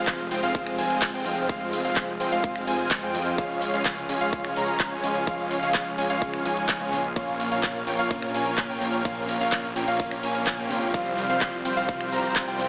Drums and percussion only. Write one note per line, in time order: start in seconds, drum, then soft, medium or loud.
0.07 kick loud
0.07 clap loud
0.07 closed hi-hat medium
0.07 cabasa soft
0.19 closed hi-hat soft
0.31 open hi-hat loud
0.31 cabasa medium
0.43 closed hi-hat medium
0.43 cabasa soft
0.55 kick loud
0.55 closed hi-hat medium
0.55 cabasa soft
0.67 finger snap medium
0.67 closed hi-hat soft
0.78 open hi-hat loud
0.78 cabasa medium
0.90 closed hi-hat medium
0.90 cabasa soft
1.02 kick loud
1.02 clap loud
1.02 closed hi-hat medium
1.02 cabasa soft
1.14 closed hi-hat soft
1.26 open hi-hat loud
1.26 cabasa medium
1.37 closed hi-hat medium
1.37 cabasa soft
1.49 kick loud
1.49 closed hi-hat medium
1.49 cabasa soft
1.61 closed hi-hat soft
1.61 cabasa soft
1.73 open hi-hat loud
1.73 cabasa medium
1.85 open hi-hat medium
1.85 cabasa soft
1.96 kick loud
1.96 clap loud
1.96 closed hi-hat medium
1.96 cabasa soft
2.08 closed hi-hat soft
2.20 open hi-hat loud
2.20 cabasa medium
2.32 closed hi-hat medium
2.32 cabasa soft
2.44 kick loud
2.44 closed hi-hat medium
2.44 cabasa soft
2.56 finger snap medium
2.56 closed hi-hat soft
2.67 open hi-hat loud
2.67 cabasa medium
2.79 closed hi-hat medium
2.79 cabasa soft
2.91 kick loud
2.91 clap loud
2.91 closed hi-hat medium
2.91 cabasa soft
3.03 closed hi-hat soft
3.15 open hi-hat loud
3.15 cabasa medium
3.27 closed hi-hat medium
3.27 cabasa soft
3.38 kick loud
3.38 closed hi-hat medium
3.38 cabasa soft
3.50 closed hi-hat soft
3.50 cabasa soft
3.62 open hi-hat loud
3.62 cabasa medium
3.74 closed hi-hat medium
3.74 cabasa soft
3.85 kick loud
3.85 clap loud
3.85 closed hi-hat medium
3.85 cabasa soft
3.97 closed hi-hat soft
4.09 open hi-hat loud
4.09 cabasa medium
4.21 closed hi-hat medium
4.21 cabasa soft
4.33 kick loud
4.33 closed hi-hat medium
4.33 cabasa soft
4.45 finger snap medium
4.45 closed hi-hat soft
4.56 open hi-hat loud
4.56 cabasa medium
4.68 closed hi-hat medium
4.68 cabasa soft
4.80 kick loud
4.80 clap loud
4.80 closed hi-hat medium
4.80 cabasa soft
4.92 closed hi-hat soft
5.04 open hi-hat loud
5.04 cabasa medium
5.15 closed hi-hat medium
5.15 cabasa soft
5.27 kick loud
5.27 closed hi-hat medium
5.27 cabasa soft
5.39 closed hi-hat soft
5.39 cabasa soft
5.51 open hi-hat loud
5.51 cabasa medium
5.63 open hi-hat medium
5.63 cabasa soft
5.74 kick loud
5.74 clap loud
5.74 closed hi-hat soft
5.74 cabasa soft
5.86 closed hi-hat soft
5.86 cabasa soft
5.98 open hi-hat loud
5.98 cabasa medium
6.10 closed hi-hat medium
6.10 cabasa soft
6.22 kick loud
6.22 closed hi-hat medium
6.22 cabasa soft
6.34 finger snap medium
6.34 closed hi-hat soft
6.45 open hi-hat loud
6.45 cabasa medium
6.57 closed hi-hat soft
6.57 cabasa soft
6.69 kick loud
6.69 clap loud
6.69 closed hi-hat medium
6.69 cabasa soft
6.81 closed hi-hat soft
6.81 cabasa soft
6.93 open hi-hat loud
6.93 cabasa medium
7.04 closed hi-hat soft
7.04 cabasa soft
7.16 kick loud
7.16 closed hi-hat medium
7.16 ride medium
7.16 cabasa soft
7.28 closed hi-hat soft
7.28 cabasa soft
7.40 open hi-hat loud
7.40 cabasa medium
7.52 closed hi-hat medium
7.52 cabasa soft
7.63 kick loud
7.63 clap loud
7.63 closed hi-hat medium
7.63 ride medium
7.63 cabasa soft
7.75 closed hi-hat soft
7.87 open hi-hat loud
7.87 cabasa medium
7.99 closed hi-hat medium
7.99 cabasa soft
8.11 kick loud
8.11 closed hi-hat soft
8.11 ride medium
8.11 cabasa soft
8.22 finger snap medium
8.22 closed hi-hat soft
8.34 open hi-hat loud
8.34 cabasa medium
8.46 closed hi-hat medium
8.46 cabasa soft
8.58 kick loud
8.58 clap loud
8.58 closed hi-hat medium
8.58 ride medium
8.58 cabasa soft
8.70 closed hi-hat soft
8.81 open hi-hat loud
8.81 cabasa medium
8.93 closed hi-hat medium
8.93 cabasa soft
9.05 kick loud
9.05 closed hi-hat medium
9.05 ride medium
9.05 cabasa soft
9.17 closed hi-hat soft
9.17 cabasa soft
9.29 open hi-hat loud
9.29 cabasa medium
9.41 open hi-hat medium
9.41 cabasa soft
9.52 kick loud
9.52 clap loud
9.52 ride medium
9.52 cabasa soft
9.64 closed hi-hat soft
9.76 open hi-hat loud
9.76 cabasa medium
9.88 closed hi-hat medium
9.88 cabasa soft
10.00 kick loud
10.00 closed hi-hat medium
10.00 ride medium
10.00 cabasa soft
10.11 finger snap medium
10.11 closed hi-hat soft
10.23 open hi-hat loud
10.23 cabasa medium
10.35 closed hi-hat medium
10.35 cabasa soft
10.47 kick loud
10.47 clap loud
10.47 closed hi-hat medium
10.47 ride medium
10.47 cabasa soft
10.59 closed hi-hat soft
10.71 open hi-hat loud
10.71 cabasa medium
10.82 closed hi-hat medium
10.82 cabasa soft
10.94 kick loud
10.94 closed hi-hat medium
10.94 ride medium
10.94 cabasa soft
11.06 closed hi-hat soft
11.06 cabasa soft
11.18 open hi-hat loud
11.18 cabasa medium
11.30 closed hi-hat medium
11.30 cabasa soft
11.41 kick loud
11.41 clap loud
11.41 closed hi-hat medium
11.41 ride medium
11.41 cabasa soft
11.53 closed hi-hat soft
11.65 open hi-hat loud
11.65 cabasa medium
11.77 closed hi-hat medium
11.77 cabasa soft
11.89 kick loud
11.89 closed hi-hat medium
11.89 ride medium
11.89 cabasa soft
12.01 finger snap medium
12.01 closed hi-hat soft
12.12 open hi-hat loud
12.12 cabasa medium
12.24 closed hi-hat medium
12.24 cabasa soft
12.36 kick loud
12.36 clap loud
12.36 closed hi-hat medium
12.36 ride medium
12.36 cabasa soft
12.48 closed hi-hat soft
12.59 open hi-hat loud
12.59 cabasa medium